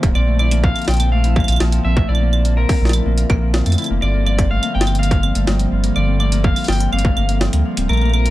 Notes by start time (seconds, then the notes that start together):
Already playing: D3 F3 G3 A#3 C4 F4
0.03 D1 F3, kick, closed hi-hat
0.15 A#1 D3 C4 D5 A5, claves
0.27 A3
0.39 E4 D5, claves
0.51 A#3, closed hi-hat
0.64 F4 F5, kick
0.76 A#3, closed hi-hat, claves
0.79 closed hi-hat
0.82 closed hi-hat
0.85 snare, closed hi-hat
0.88 A#1 F3 G5, closed hi-hat
0.91 closed hi-hat
0.94 closed hi-hat
0.97 closed hi-hat
1.00 C4, closed hi-hat, claves
1.12 A3 F5
1.24 E4, closed hi-hat
1.36 A#3, kick, claves
1.40 claves
1.44 claves
1.48 A#1 F4, closed hi-hat, claves
1.52 claves
1.56 claves
1.60 A#1 A#3, snare
1.72 F3, closed hi-hat
1.85 A#1 C4 E5
1.97 A3, kick
2.09 A#1 E4 D5
2.15 claves
2.21 A#3
2.33 F4, claves
2.45 A#3, closed hi-hat
2.57 F3 A#4
2.69 C4, kick, open hi-hat
2.81 A#1 A3
2.85 snare
2.89 snare
2.93 E4, closed hi-hat, claves
3.05 A#1 A#3
3.18 F4, closed hi-hat
3.30 A#1 A#3, kick, claves
3.42 F3
3.54 C4, snare
3.66 F2 A3, closed hi-hat, claves
3.70 closed hi-hat, claves
3.74 claves
3.78 E4, closed hi-hat, claves
3.82 closed hi-hat, claves
3.86 claves
3.90 F1 A#3
4.02 G1 F3 G3 F4 D5, claves
4.14 A#3
4.26 F3 D5, claves
4.38 C4, kick, closed hi-hat
4.51 A3 F5
4.63 A#3, closed hi-hat, claves
4.75 G1 A#3 G5
4.81 snare
4.87 F4, closed hi-hat, claves
4.95 F5, closed hi-hat
4.99 A#3
5.03 closed hi-hat
5.11 F3, kick, closed hi-hat
5.23 C4, claves
5.35 G1 A3, closed hi-hat
5.47 G1 A#3, snare
5.59 A#3, closed hi-hat
5.72 G1 F4
5.84 A#3, closed hi-hat
5.96 G1 F3 D5, claves
6.08 C4
6.20 A3 D5, claves
6.32 A#3, closed hi-hat
6.44 A#3 F5, kick
6.56 F4, open hi-hat, claves
6.64 A#3, open hi-hat
6.68 G1 G5, snare
6.72 open hi-hat
6.80 F3, closed hi-hat
6.92 G1 C4 F5, claves
6.99 closed hi-hat
7.05 A3, kick
7.17 G1 A#3, claves
7.29 A#3, closed hi-hat
7.41 F4, snare
7.53 D2 A#3, closed hi-hat
7.65 F3
7.77 D1 C4, closed hi-hat
7.89 A#1 A3 F4 A#4, claves
7.93 claves
7.97 claves
8.01 A#3, claves
8.05 claves
8.09 claves
8.13 A#3 A#4, claves
8.26 F4, closed hi-hat